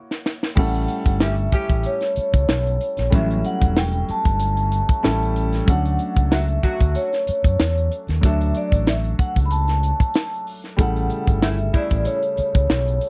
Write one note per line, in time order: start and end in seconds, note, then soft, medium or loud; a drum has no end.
0.00 0.20 A#3 medium
0.00 0.21 E4 medium
0.00 0.21 F#4 medium
0.00 0.22 C#5 medium
0.11 snare medium
0.26 snare medium
0.43 snare medium
0.55 0.84 A1 loud
0.55 3.07 G3 medium
0.55 3.08 A3 medium
0.55 3.08 C#4 medium
0.55 3.09 E4 medium
0.55 3.09 A4 medium
0.55 1.17 F#5 medium
0.55 kick loud
0.55 crash loud
0.75 closed hi-hat medium
0.88 closed hi-hat medium
1.06 1.45 G1 medium
1.06 kick loud
1.06 closed hi-hat medium
1.20 1.35 C#4 medium
1.20 1.35 E4 medium
1.20 1.35 G4 medium
1.20 1.87 E5 medium
1.20 snare loud
1.20 tambourine loud
1.37 closed hi-hat soft
1.52 1.99 C#4 medium
1.52 1.99 E4 medium
1.52 1.99 G4 loud
1.52 muted fingered electric bass stroke soft
1.52 kick medium
1.52 closed hi-hat medium
1.69 1.82 A1 loud
1.69 kick medium
1.69 closed hi-hat medium
1.83 3.09 C#5 medium
1.83 closed hi-hat medium
2.01 snare soft
2.01 closed hi-hat medium
2.16 muted fingered electric bass stroke soft
2.16 closed hi-hat medium
2.34 2.46 C#2 medium
2.34 kick loud
2.34 closed hi-hat medium
2.49 2.76 B1 medium
2.49 snare loud
2.49 tambourine medium
2.67 closed hi-hat soft
2.81 closed hi-hat medium
2.97 3.11 A#1 loud
2.97 snare soft
2.97 closed hi-hat medium
3.10 3.40 A1 loud
3.10 5.01 F#3 medium
3.10 4.99 G3 medium
3.10 4.99 A3 medium
3.10 5.00 C#4 medium
3.10 5.00 E4 medium
3.10 kick loud
3.10 closed hi-hat medium
3.14 3.46 E5 loud
3.31 closed hi-hat medium
3.45 3.78 F#5 loud
3.45 closed hi-hat medium
3.62 4.01 E1 loud
3.62 kick medium
3.62 closed hi-hat medium
3.76 4.10 G5 loud
3.76 snare loud
3.76 tambourine medium
3.93 closed hi-hat soft
4.09 5.33 A5 loud
4.09 muted fingered electric bass stroke soft
4.09 closed hi-hat medium
4.25 4.79 G1 loud
4.25 kick medium
4.25 closed hi-hat medium
4.40 closed hi-hat medium
4.57 closed hi-hat medium
4.72 closed hi-hat medium
4.89 kick loud
4.89 closed hi-hat medium
5.03 5.58 A1 medium
5.03 5.67 G3 medium
5.03 5.65 A3 medium
5.03 5.66 C#4 medium
5.03 5.68 E4 medium
5.03 5.68 A4 medium
5.03 snare loud
5.03 tambourine medium
5.23 closed hi-hat medium
5.36 closed hi-hat medium
5.53 snare soft
5.53 closed hi-hat medium
5.66 5.95 D2 loud
5.66 8.18 F#3 medium
5.66 8.19 A3 medium
5.66 8.19 C#4 medium
5.66 8.20 D4 medium
5.66 8.20 A4 medium
5.66 6.34 F#5 loud
5.66 kick loud
5.66 closed hi-hat medium
5.85 closed hi-hat medium
5.99 closed hi-hat medium
6.17 6.56 C#2 medium
6.17 kick loud
6.17 closed hi-hat medium
6.31 6.46 F#3 medium
6.31 6.46 D4 medium
6.31 6.46 F#4 medium
6.31 6.97 E5 loud
6.31 snare loud
6.31 tambourine medium
6.48 closed hi-hat soft
6.63 7.10 F#3 medium
6.63 7.10 D4 medium
6.63 7.10 F#4 loud
6.63 muted fingered electric bass stroke soft
6.63 kick medium
6.63 closed hi-hat medium
6.81 6.93 D2 medium
6.81 kick medium
6.81 closed hi-hat medium
6.95 7.87 C#5 medium
6.95 closed hi-hat medium
7.13 snare soft
7.13 closed hi-hat soft
7.27 muted fingered electric bass stroke soft
7.27 closed hi-hat medium
7.44 7.57 F#2 medium
7.44 kick medium
7.44 closed hi-hat medium
7.59 7.87 E2 medium
7.59 snare loud
7.59 tambourine medium
7.78 closed hi-hat soft
7.92 closed hi-hat medium
8.08 8.21 D#2 medium
8.08 snare soft
8.08 closed hi-hat medium
8.21 8.50 D2 loud
8.21 10.73 F#3 medium
8.21 10.74 A3 medium
8.21 10.75 D4 medium
8.21 10.75 A4 medium
8.21 kick loud
8.21 closed hi-hat medium
8.25 8.57 E5 medium
8.41 closed hi-hat medium
8.55 8.89 D5 medium
8.55 closed hi-hat medium
8.72 9.11 A1 medium
8.72 kick medium
8.72 closed hi-hat medium
8.87 9.01 E5 medium
8.87 snare loud
8.87 tambourine loud
9.04 closed hi-hat soft
9.19 9.31 F#5 medium
9.19 muted fingered electric bass stroke soft
9.19 kick loud
9.19 closed hi-hat medium
9.36 9.90 C#2 medium
9.36 kick medium
9.36 closed hi-hat medium
9.46 9.51 B5 medium
9.51 10.43 A5 loud
9.51 closed hi-hat medium
9.68 snare soft
9.68 closed hi-hat medium
9.83 closed hi-hat medium
10.00 kick medium
10.00 closed hi-hat medium
10.14 snare loud
10.14 tambourine medium
10.34 closed hi-hat soft
10.47 open hi-hat medium
10.63 snare soft
10.63 closed hi-hat soft
10.77 11.06 A1 loud
10.77 13.09 C#3 medium
10.77 13.09 G3 medium
10.77 13.09 A3 medium
10.77 13.09 E4 medium
10.77 13.09 A4 medium
10.77 11.45 F#5 medium
10.77 kick loud
10.77 closed hi-hat loud
10.96 closed hi-hat medium
11.10 closed hi-hat medium
11.27 11.67 G1 medium
11.27 kick loud
11.27 closed hi-hat medium
11.42 11.57 A3 medium
11.42 11.57 C#4 medium
11.42 11.57 E4 medium
11.42 11.76 E5 medium
11.42 snare loud
11.42 tambourine medium
11.58 closed hi-hat soft
11.74 12.21 C#3 medium
11.74 12.21 A3 medium
11.74 12.21 E4 medium
11.74 12.08 D5 medium
11.74 muted fingered electric bass stroke soft
11.74 kick medium
11.74 closed hi-hat medium
11.91 12.04 A1 medium
11.91 kick medium
11.91 closed hi-hat medium
12.05 13.09 C#5 medium
12.05 closed hi-hat loud
12.23 closed hi-hat medium
12.37 muted fingered electric bass stroke soft
12.37 closed hi-hat medium
12.55 12.68 C#2 loud
12.55 kick loud
12.55 closed hi-hat medium
12.70 12.97 B1 medium
12.70 snare loud
12.70 tambourine medium
12.88 closed hi-hat medium
13.01 closed hi-hat medium